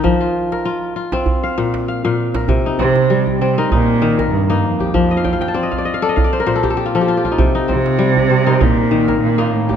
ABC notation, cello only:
X:1
M:4/4
L:1/8
Q:"Swing 16ths" 1/4=98
K:Cdor
V:1 name="Cello" clef=bass
z8 | z C,2 C, B,,2 G,, F,,- | F,,3 z4 z | z C,3 B,,2 B,, A,, |]